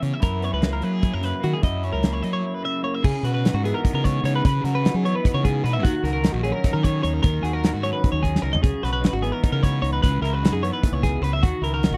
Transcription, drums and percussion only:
0.03 closed hi-hat medium
0.22 kick loud
0.22 closed hi-hat medium
0.42 closed hi-hat medium
0.62 snare medium
0.62 closed hi-hat medium
0.82 closed hi-hat soft
1.03 kick loud
1.03 closed hi-hat medium
1.23 snare soft
1.23 closed hi-hat medium
1.44 closed hi-hat medium
1.63 kick loud
1.63 closed hi-hat medium
1.83 closed hi-hat soft
2.03 snare medium
2.03 closed hi-hat medium
2.23 closed hi-hat medium
3.04 kick loud
3.04 crash loud
3.25 closed hi-hat medium
3.45 snare medium
3.45 closed hi-hat medium
3.65 closed hi-hat medium
3.85 kick loud
3.85 closed hi-hat medium
4.05 kick medium
4.05 closed hi-hat medium
4.25 closed hi-hat medium
4.45 kick loud
4.45 closed hi-hat medium
4.65 snare soft
4.65 closed hi-hat medium
4.85 snare medium
4.85 closed hi-hat medium
5.06 closed hi-hat medium
5.25 kick loud
5.25 closed hi-hat medium
5.45 kick medium
5.45 closed hi-hat medium
5.66 closed hi-hat medium
5.85 kick loud
5.85 closed hi-hat loud
6.05 snare soft
6.05 closed hi-hat medium
6.24 snare medium
6.24 closed hi-hat medium
6.44 closed hi-hat medium
6.64 kick medium
6.64 snare soft
6.64 closed hi-hat medium
6.84 kick medium
6.84 closed hi-hat medium
7.04 closed hi-hat medium
7.24 kick loud
7.24 closed hi-hat medium
7.45 closed hi-hat medium
7.64 snare medium
7.64 closed hi-hat medium
7.84 closed hi-hat medium
8.04 kick loud
8.04 closed hi-hat medium
8.24 kick medium
8.24 closed hi-hat medium
8.36 snare medium
8.55 floor tom medium
8.64 kick loud
8.64 closed hi-hat medium
8.85 snare soft
8.85 closed hi-hat medium
9.04 snare medium
9.04 closed hi-hat medium
9.24 closed hi-hat medium
9.44 kick loud
9.44 closed hi-hat medium
9.63 kick medium
9.63 closed hi-hat medium
9.84 closed hi-hat medium
10.04 kick loud
10.04 closed hi-hat medium
10.25 closed hi-hat medium
10.45 snare medium
10.45 closed hi-hat medium
10.64 closed hi-hat medium
10.83 kick loud
10.83 closed hi-hat medium
11.03 kick medium
11.03 snare soft
11.03 closed hi-hat medium
11.24 closed hi-hat medium
11.43 kick loud
11.43 closed hi-hat medium
11.64 closed hi-hat medium
11.83 snare loud
11.83 closed hi-hat medium

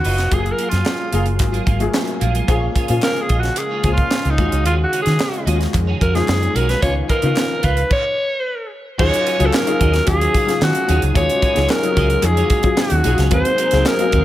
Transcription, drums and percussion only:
0.05 open hi-hat medium
0.18 snare soft
0.18 closed hi-hat soft
0.32 kick loud
0.32 closed hi-hat medium
0.46 closed hi-hat soft
0.58 closed hi-hat medium
0.71 snare soft
0.71 closed hi-hat medium
0.86 snare loud
0.86 clap medium
1.13 closed hi-hat medium
1.26 closed hi-hat soft
1.39 kick medium
1.39 clap medium
1.39 closed hi-hat loud
1.54 closed hi-hat soft
1.67 kick medium
1.67 closed hi-hat medium
1.80 closed hi-hat soft
1.94 snare loud
1.94 clap medium
2.07 closed hi-hat soft
2.21 closed hi-hat medium
2.35 closed hi-hat soft
2.48 kick loud
2.48 closed hi-hat medium
2.76 kick medium
2.76 closed hi-hat medium
2.88 closed hi-hat medium
3.02 snare loud
3.02 clap medium
3.16 closed hi-hat soft
3.29 kick medium
3.29 closed hi-hat medium
3.43 snare soft
3.43 closed hi-hat soft
3.56 clap medium
3.56 closed hi-hat loud
3.84 kick medium
3.84 closed hi-hat medium
3.97 kick medium
3.97 closed hi-hat soft
4.11 snare loud
4.11 clap medium
4.25 closed hi-hat soft
4.38 kick loud
4.38 closed hi-hat medium
4.52 closed hi-hat soft
4.66 closed hi-hat medium
4.93 closed hi-hat medium
5.06 snare soft
5.06 closed hi-hat medium
5.20 snare loud
5.20 clap medium
5.33 closed hi-hat soft
5.47 closed hi-hat medium
5.61 snare soft
5.61 closed hi-hat soft
5.74 kick medium
5.74 clap medium
5.74 closed hi-hat medium
6.01 kick medium
6.01 closed hi-hat medium
6.15 snare soft
6.15 closed hi-hat soft
6.28 snare loud
6.28 clap medium
6.42 closed hi-hat soft
6.56 closed hi-hat medium
6.69 snare soft
6.69 closed hi-hat soft
6.82 kick loud
6.82 closed hi-hat medium
7.09 kick medium
7.09 closed hi-hat medium
7.22 closed hi-hat medium
7.36 snare loud
7.36 clap medium
7.63 kick medium
7.63 closed hi-hat medium
7.77 closed hi-hat soft
7.90 kick loud
7.90 crash medium
8.99 kick loud
8.99 crash loud
9.14 closed hi-hat medium
9.27 closed hi-hat medium
9.40 closed hi-hat medium
9.53 snare loud
9.53 clap medium
9.67 closed hi-hat medium
9.81 kick medium
9.81 closed hi-hat medium
9.93 snare soft
9.93 closed hi-hat soft
10.07 kick loud
10.07 clap medium
10.07 closed hi-hat loud
10.21 closed hi-hat medium
10.34 kick loud
10.34 closed hi-hat medium
10.49 snare soft
10.49 closed hi-hat medium
10.62 snare loud
10.62 clap medium
10.75 closed hi-hat medium
10.89 closed hi-hat medium
11.02 closed hi-hat soft
11.15 kick loud
11.15 closed hi-hat medium
11.29 closed hi-hat medium
11.42 kick medium
11.42 closed hi-hat medium
11.56 snare soft
11.56 closed hi-hat medium
11.69 snare loud
11.69 clap medium
11.83 closed hi-hat medium
11.97 kick medium
11.97 closed hi-hat medium
12.10 closed hi-hat soft
12.23 clap medium
12.23 closed hi-hat medium
12.37 closed hi-hat medium
12.50 kick medium
12.50 closed hi-hat medium
12.63 kick medium
12.63 closed hi-hat soft
12.77 snare loud
12.77 clap medium
12.90 closed hi-hat medium
13.04 closed hi-hat medium
13.18 snare soft
13.18 closed hi-hat soft
13.31 kick loud
13.31 closed hi-hat medium
13.45 closed hi-hat medium
13.58 closed hi-hat medium
13.71 snare soft
13.71 closed hi-hat medium
13.86 snare loud
13.86 clap medium
13.99 closed hi-hat soft
14.12 kick medium
14.12 closed hi-hat medium

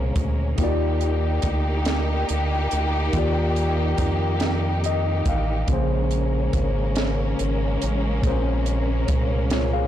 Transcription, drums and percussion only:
0.16 kick loud
0.16 closed hi-hat medium
0.58 kick loud
0.58 closed hi-hat medium
1.01 closed hi-hat soft
1.42 kick medium
1.42 closed hi-hat medium
1.85 snare loud
1.85 closed hi-hat medium
2.29 closed hi-hat medium
2.71 closed hi-hat medium
3.13 kick loud
3.13 closed hi-hat medium
3.56 closed hi-hat soft
3.98 kick medium
3.98 closed hi-hat medium
4.40 snare loud
4.40 closed hi-hat medium
4.84 closed hi-hat medium
5.26 kick medium
5.26 closed hi-hat medium
5.68 kick loud
5.68 closed hi-hat medium
6.11 closed hi-hat soft
6.53 kick medium
6.53 closed hi-hat medium
6.96 snare loud
6.96 closed hi-hat medium
7.39 closed hi-hat medium
7.82 closed hi-hat medium
8.23 kick loud
8.23 closed hi-hat medium
8.66 closed hi-hat soft
9.08 kick medium
9.08 closed hi-hat medium
9.50 snare loud
9.50 closed hi-hat medium

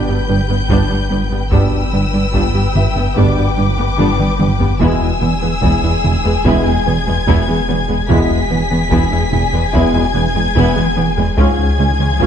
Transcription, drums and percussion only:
0.70 taiko medium
1.52 taiko loud
2.34 taiko medium
2.76 taiko mid medium
3.17 taiko medium
3.99 taiko mid loud
4.20 taiko mid medium
4.40 taiko mid loud
4.61 taiko low medium
4.81 taiko loud
5.63 taiko medium
6.04 taiko mid medium
6.45 taiko medium
7.27 taiko medium
8.10 taiko loud
8.92 taiko medium
9.33 taiko mid medium
9.74 taiko medium
10.56 taiko medium
11.38 taiko loud
12.20 taiko medium

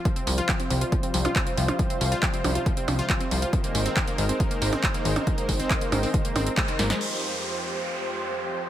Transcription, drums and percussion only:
0.05 kick loud
0.05 closed hi-hat medium
0.16 closed hi-hat medium
0.27 open hi-hat loud
0.38 closed hi-hat medium
0.49 kick loud
0.49 clap loud
0.49 closed hi-hat medium
0.60 closed hi-hat medium
0.70 open hi-hat loud
0.81 closed hi-hat medium
0.92 kick loud
0.92 closed hi-hat medium
1.03 closed hi-hat medium
1.14 open hi-hat loud
1.25 closed hi-hat medium
1.25 percussion blips medium
1.36 kick loud
1.36 clap loud
1.36 closed hi-hat medium
1.47 closed hi-hat medium
1.57 open hi-hat loud
1.68 closed hi-hat medium
1.68 percussion blips medium
1.79 kick loud
1.79 closed hi-hat medium
1.90 closed hi-hat medium
2.01 open hi-hat loud
2.12 closed hi-hat medium
2.23 kick loud
2.23 clap loud
2.23 closed hi-hat medium
2.34 closed hi-hat medium
2.44 open hi-hat loud
2.44 percussion blips medium
2.55 closed hi-hat medium
2.66 kick loud
2.66 closed hi-hat medium
2.77 closed hi-hat medium
2.88 open hi-hat loud
2.88 percussion blips medium
2.99 closed hi-hat medium
3.10 kick loud
3.10 clap loud
3.10 closed hi-hat medium
3.21 closed hi-hat medium
3.31 open hi-hat loud
3.42 closed hi-hat medium
3.53 kick loud
3.53 closed hi-hat medium
3.64 closed hi-hat medium
3.75 open hi-hat loud
3.86 closed hi-hat medium
3.97 kick loud
3.97 clap loud
3.97 closed hi-hat medium
4.08 closed hi-hat medium
4.18 open hi-hat loud
4.29 closed hi-hat medium
4.40 kick loud
4.40 closed hi-hat medium
4.51 closed hi-hat medium
4.62 open hi-hat loud
4.73 closed hi-hat medium
4.73 percussion blips medium
4.83 kick loud
4.83 clap loud
4.83 closed hi-hat medium
4.94 closed hi-hat medium
5.05 open hi-hat loud
5.16 closed hi-hat medium
5.16 percussion blips medium
5.27 kick loud
5.27 closed hi-hat medium
5.38 closed hi-hat medium
5.49 kick medium
5.49 open hi-hat loud
5.60 closed hi-hat medium
5.70 kick loud
5.70 clap loud
5.70 closed hi-hat medium
5.81 closed hi-hat medium
5.92 open hi-hat loud
5.92 percussion blips medium
6.03 open hi-hat medium
6.14 kick loud
6.14 closed hi-hat medium
6.25 closed hi-hat medium
6.36 open hi-hat loud
6.36 percussion blips medium
6.47 closed hi-hat medium
6.57 kick loud
6.57 clap loud
6.57 closed hi-hat medium
6.68 closed hi-hat medium
6.79 snare medium
6.79 open hi-hat loud
6.90 snare medium
6.90 closed hi-hat medium
7.01 crash medium

